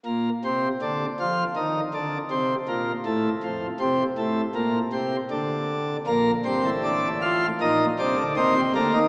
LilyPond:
\new Staff \with { instrumentName = "Pipe organ" } { \clef bass \time 4/4 \key bes \major \tempo 4 = 80 << { bes,8 c8 d8 f8 ees8 d8 c8 bes,8 | a,8 f,8 c8 a,8 bes,8 c8 d4 | bes8 c'8 d'8 f'8 ees'8 d'8 c'8 bes8 | } \\ { r1 | r1 | <bes,, bes,>8 <g,, g,>16 <a,, a,>4~ <a,, a,>16 <bes,, bes,>8 <c, c>16 <d, d>16 <ees, ees>16 <c, c>16 <d, d>16 <ees, ees>16 | } >> }